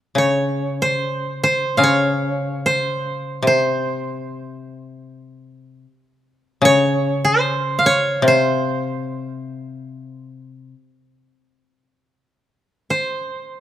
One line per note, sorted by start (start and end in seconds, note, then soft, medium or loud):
0.15 1.77 C#3 soft
0.15 0.88 C#5 medium
0.82 1.43 C5 medium
1.44 1.89 C5 medium
1.77 3.43 C#3 medium
1.77 3.22 F5 medium
1.83 2.72 C#5 medium
2.66 3.47 C5 medium
3.43 5.84 C3 medium
3.47 5.19 C5 medium
6.62 8.24 C#3 medium
6.62 7.31 C#5 medium
7.25 7.92 C5 medium
7.79 9.23 F5 medium
7.86 8.34 C#5 medium
8.22 10.72 C3 medium
8.28 12.43 C5 medium
12.90 13.60 C5 medium